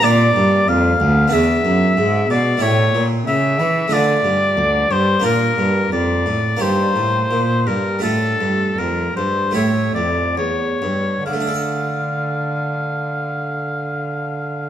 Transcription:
<<
  \new Staff \with { instrumentName = "Oboe" } { \time 4/4 \key d \minor \tempo 4 = 86 d''4 f''4 e''4. d''8 | cis''8 r8 e''4 d''4. c''8 | bes'4 d''4 c''4. bes'8 | a'4 bes'8 c''8 cis''8 d''8 cis''4 |
f''1 | }
  \new Staff \with { instrumentName = "Harpsichord" } { \time 4/4 \key d \minor <bes d' f'>2 <b d' gis'>2 | <a e' g'>2 <a d' f'>2 | <bes d' f'>2 <bes ees' g'>2 | <a d' f'>2 <a e' g'>2 |
<d a d' a' d''>1 | }
  \new Staff \with { instrumentName = "Harpsichord" } { \clef bass \time 4/4 \key d \minor bes,8 g,8 f,8 d,8 e,8 fis,8 gis,8 b,8 | a,8 bes,8 cis8 e8 d8 g,8 d,8 g,8 | bes,8 g,8 f,8 a,8 g,8 a,8 bes,8 g,8 | a,8 g,8 f,8 g,8 a,8 f,8 e,8 g,8 |
r1 | }
  \new Staff \with { instrumentName = "Cello" } { \clef bass \time 4/4 \key d \minor bes,8 g,8 f,8 d,8 e,8 fis,8 gis,8 b,8 | a,8 bes,8 cis8 e8 d8 g,8 d,8 g,8 | bes,8 g,8 f,8 a,8 g,8 a,8 bes,8 g,8 | a,8 g,8 f,8 g,8 a,8 f,8 e,8 g,8 |
d1 | }
>>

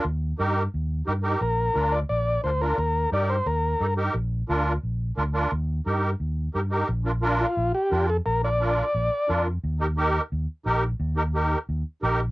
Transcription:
<<
  \new Staff \with { instrumentName = "Transistor combo organ" } { \time 4/4 \key bes \major \tempo 4 = 175 r1 | bes'4. d''8 d''4 c''8 bes'8 | bes'4 d''8 c''8 bes'4. r8 | r1 |
r1 | r4. f'4 g'4 a'8 | bes'8 d''2. r8 | r1 |
r1 | }
  \new Staff \with { instrumentName = "Accordion" } { \time 4/4 \key bes \major r4 <ees' g' bes'>8 r4. <ees' g' bes'>8 <ees' g' bes'>8 | r4 <d' f' bes'>8 r4. <d' f' bes'>8 <d' f' bes'>8 | r4 <ees' g' bes'>8 r4. <ees' g' a'>8 <ees' g' bes'>8 | r4 <d' f' bes'>8 r4. <d' f' bes'>8 <d' f' bes'>8 |
r4 <ees' g' bes'>8 r4. <ees' g' bes'>8 <ees' g' bes'>8 | r8 <d' f' bes'>8 <d' f' bes'>8 r4. <d' f' bes'>8 r8 | r8 <d' f' bes'>8 <d' f' bes'>8 r4. <d' f' bes'>8 r8 | r8 <ees' g' bes'>8 <ees' g' bes'>8 r4. <ees' g' bes'>8 r8 |
r8 <ees' g' bes'>8 <ees' g' bes'>8 r4. <ees' g' bes'>8 r8 | }
  \new Staff \with { instrumentName = "Fingered electric bass" } { \clef bass \time 4/4 \key bes \major ees,4 g,4 ees,4 g,4 | bes,,4 d,4 bes,,4 d,4 | ees,4 g,4 ees,4 g,4 | bes,,4 d,4 bes,,4 d,4 |
ees,4 g,4 ees,4 g,4 | bes,,2 bes,,8 r8 f,4 | bes,,2 bes,,8 r8 f,4 | ees,2 ees,8 r8 bes,,4 |
ees,2 ees,8 r8 bes,,4 | }
>>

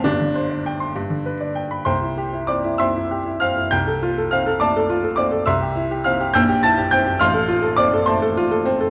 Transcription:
\new Staff \with { instrumentName = "Grand piano" } { \time 6/8 \key c \major \tempo 4. = 67 << { d'4. r4. | <c'' g'' c'''>4 <d'' d'''>8 <e'' c''' e'''>4 <f'' f'''>8 | <g'' g'''>4 <f'' f'''>8 <d'' a'' d'''>4 <d'' d'''>8 | <e'' c''' e'''>4 <f'' f'''>8 <g'' e''' g'''>8 <a'' a'''>8 <g'' g'''>8 |
<f'' c''' f'''>4 <d'' d'''>8 <c'' a'' c'''>4 r8 | } \\ { <g,, g,>16 d16 c''16 d''16 g''16 c'''16 g,16 d16 b'16 d''16 g''16 b''16 | c,16 e'16 g'16 e'16 c'16 e'16 c'16 e'16 g'16 e'16 c'16 e'16 | c,16 a'16 f'16 a'16 c'16 a'16 a16 a'16 f'16 a'16 c'16 a'16 | c,16 g'16 e'16 g'16 c'16 g'16 bes,,16 g'16 e'16 g'16 c'16 g'16 |
a,,16 a'16 f'16 a'16 c'16 a'16 a16 a'16 f'16 a'16 c'16 a'16 | } >> }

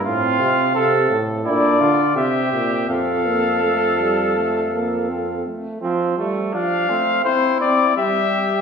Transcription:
<<
  \new Staff \with { instrumentName = "Cornet" } { \time 4/4 \key f \major \tempo 4 = 84 f''4. r8 d''4 e''4 | f''2.~ f''8 r8 | r4 f''4 c''8 d''8 e''4 | }
  \new Staff \with { instrumentName = "Flugelhorn" } { \time 4/4 \key f \major f'4 a'8 r8 e'8 f'8 g'4 | a'2.~ a'8 r8 | c'8 a8 d'8 c'8 e'4 g'4 | }
  \new Staff \with { instrumentName = "Trombone" } { \time 4/4 \key f \major c'4. r8 d'4 c'4 | c'8 bes8 a8 g8 a8 bes8 c'8 a8 | f8 g8 f8 a8 c'8 c'8 g4 | }
  \new Staff \with { instrumentName = "Bass trombone" } { \clef bass \time 4/4 \key f \major a,8 c8 c8 a,8 bes,8 d8 c8 bes,8 | f,2.~ f,8 r8 | r1 | }
>>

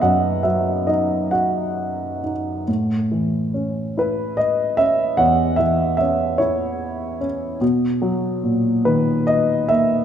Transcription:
<<
  \new Staff \with { instrumentName = "Grand piano" } { \time 6/8 \key b \major \tempo 4. = 48 << { fis''8 e''8 dis''8 fis''4 r8 | r4. b'8 dis''8 e''8 | fis''8 e''8 e''8 cis''4 r8 | r4. b'8 dis''8 e''8 | } \\ { dis''4. r4. | r2. | cis''4. r4. | r2. | } >> }
  \new Staff \with { instrumentName = "Grand piano" } { \time 6/8 \key b \major <fis, b fis'>8 fis8 dis'8 fis'4 dis'8 | a,8 e8 cis'8 e'4 cis'8 | e,8 e8 cis'8 e'4 cis'8 | b,8 fis8 ais,8 dis4 ais8 | }
>>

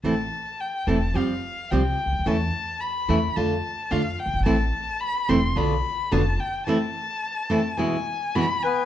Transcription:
<<
  \new Staff \with { instrumentName = "Violin" } { \time 4/4 \key a \minor \tempo 4 = 108 a''4 g''8 a''8 f''4 g''4 | a''4 b''4 a''4 f''8 g''8 | a''4 b''8 c'''8 b''4 a''8 g''8 | a''2 gis''4 b''8 gis''8 | }
  \new Staff \with { instrumentName = "Bandoneon" } { \time 4/4 \key a \minor r1 | r1 | r1 | r2. r8 <b b'>8 | }
  \new Staff \with { instrumentName = "Nylon-string guitar" } { \time 4/4 \key a \minor <e a c' e'>8 r4 <e a c' e'>8 <f g c' g'>8 r8 <f g c' g'>8 r8 | <e a cis' e'>8 r4 <e a cis' e'>8 <d a d' f'>8 r8 <d a d' f'>8 r8 | <e a c' e'>8 r4 <e a c' e'>8 <b, d b d' f'>8 r8 <b, d b d' f'>8 r8 | <e a c' e'>8 r4 <e a c' e'>8 <b, e gis b e'>8 r8 <b, e gis b e'>8 r8 | }
  \new Staff \with { instrumentName = "Upright bass" } { \clef bass \time 4/4 \key a \minor a,,16. r4 r32 e,,16. r32 f,16. r8 r32 c,16. r16 cis,32 d,32 dis,32 | e,16. r4 r32 e,16. r32 f,16. r8 r32 f,16. r16 fis,,32 g,,32 gis,,32 | a,,16. r4 r32 e,,16. r32 b,,16. r8 r32 f,,16. r8 r32 | r1 | }
>>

